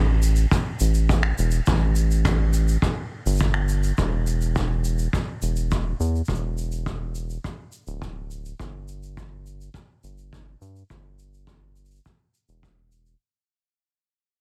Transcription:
Already playing: analog synth bass A1
0.23 shaker
0.36 shaker
0.51 kick, shaker
0.80 analog synth bass A1, shaker
0.94 shaker
1.09 kick, shaker
1.23 finger snap
1.38 analog synth bass E1, shaker
1.51 shaker
1.66 analog synth bass A1, kick, shaker
1.96 shaker
2.11 shaker
2.25 finger snap, kick, shaker
2.53 shaker
2.68 shaker
2.82 kick, shaker
3.26 analog synth bass G1, shaker
3.29 shaker
3.31 shaker
3.34 shaker
3.36 shaker
3.38 shaker
3.40 kick, shaker
3.54 finger snap
3.69 shaker
3.83 shaker
3.98 analog synth bass E1, kick, shaker
4.27 shaker
4.41 shaker
4.56 kick, shaker
4.85 shaker
4.98 shaker
5.13 kick, shaker
5.42 analog synth bass E1, shaker
5.56 shaker
5.71 kick, shaker
6.00 analog synth bass E2, shaker
6.15 shaker
6.25 analog synth bass E1, kick, shaker
6.29 shaker
6.35 shaker
6.58 shaker
6.72 shaker
6.86 kick, shaker
7.15 shaker
7.30 shaker
7.44 kick, shaker
7.72 shaker
7.87 analog synth bass D1, shaker
8.02 kick, shaker
8.31 shaker
8.46 shaker
8.59 analog synth bass G1, kick, shaker
8.88 shaker
9.03 shaker
9.17 kick, shaker
9.46 shaker
9.61 shaker
9.74 kick, shaker
10.04 analog synth bass G1, shaker
10.18 shaker
10.33 kick, shaker
10.61 analog synth bass G2, shaker
10.76 shaker
10.90 analog synth bass G1, kick, shaker
11.19 shaker
11.34 shaker
11.47 kick, shaker
11.76 shaker
11.85 shaker
11.91 shaker
11.96 shaker
12.05 kick, shaker
12.34 shaker
12.49 analog synth bass E1, shaker
12.63 kick, shaker
12.92 shaker
13.06 shaker

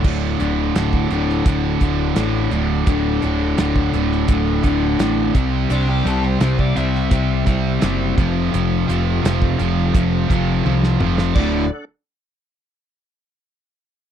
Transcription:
0.04 picked electric bass D1, overdriven electric guitar D2 A2 D3, tonewheel organ D4 A4 F#5, kick, crash
0.38 picked electric bass D1, overdriven electric guitar D2 A2 D3, closed hi-hat
0.75 picked electric bass D1, overdriven electric guitar D2 A2 D3, snare, closed hi-hat
0.93 kick
1.10 picked electric bass D1, overdriven electric guitar D2 A2 D3, closed hi-hat
1.29 snare
1.45 picked electric bass D1, overdriven electric guitar D2 A2 D3, kick, closed hi-hat
1.80 picked electric bass D1, overdriven electric guitar D2 A2 D3, kick, closed hi-hat
2.16 picked electric bass A1, overdriven electric guitar D2 A2 D3, snare, closed hi-hat
2.50 picked electric bass D1, overdriven electric guitar D2 A2 D3, closed hi-hat
2.85 picked electric bass D1, overdriven electric guitar D2 A2 D3, tonewheel organ D4 A4 F#5, kick, closed hi-hat
3.22 picked electric bass D1, overdriven electric guitar D2 A2 D3, closed hi-hat
3.58 picked electric bass D1, overdriven electric guitar D2 A2 D3, snare, closed hi-hat
3.76 kick
3.92 picked electric bass D1, overdriven electric guitar D2 A2 D3, closed hi-hat
4.11 snare
4.28 picked electric bass D1, overdriven electric guitar D2 A2 D3, kick, closed hi-hat
4.63 picked electric bass D1, overdriven electric guitar D2 A2 D3, kick, closed hi-hat
4.98 picked electric bass A1, overdriven electric guitar D2 A2 D3, snare, closed hi-hat
5.34 picked electric bass C2, overdriven electric guitar C3 G3 C4, tonewheel organ C4 G4 E5, kick, closed hi-hat
5.69 picked electric bass C2, overdriven electric guitar C3 G3 C4 D4, closed hi-hat
5.89 overdriven electric guitar G4
6.04 picked electric bass C2, overdriven electric guitar C3 G3 C4 A4, closed hi-hat
6.24 overdriven electric guitar C5
6.41 picked electric bass C2, overdriven electric guitar C3 G3 C4, snare, closed hi-hat
6.59 overdriven electric guitar D5, kick
6.75 picked electric bass C2, overdriven electric guitar C3 G3 C4 E5, closed hi-hat
6.95 snare
7.10 picked electric bass C2, overdriven electric guitar C3 G3 C4, kick, closed hi-hat
7.46 picked electric bass C2, overdriven electric guitar C3 G3 C4, kick, closed hi-hat
7.82 picked electric bass F#1, overdriven electric guitar C3 G3 C4, snare, closed hi-hat
8.16 picked electric bass F1, overdriven electric guitar F2 C3 F3, tonewheel organ C4 F5, kick, closed hi-hat
8.20 tonewheel organ A4
8.52 picked electric bass F1, overdriven electric guitar F2 C3 F3, closed hi-hat
8.87 picked electric bass F1, overdriven electric guitar F2 C3 F3, closed hi-hat
9.23 picked electric bass F1, overdriven electric guitar F2 C3 F3, snare, closed hi-hat
9.42 kick
9.59 picked electric bass F1, overdriven electric guitar F2 C3 F3, closed hi-hat
9.94 picked electric bass F1, overdriven electric guitar F2 C3 F3, kick, closed hi-hat
10.27 picked electric bass F1, overdriven electric guitar F2 C3 F3, kick, closed hi-hat
10.63 picked electric bass C2, overdriven electric guitar F2 C3 F3, high tom
10.83 snare
11.00 picked electric bass F1, overdriven electric guitar F2 C3 F3, mid tom
11.18 snare
11.35 picked electric bass D1, overdriven electric guitar D2 A2 D3 A3 F#4 D5, tonewheel organ D4 A4 F#5, kick, crash

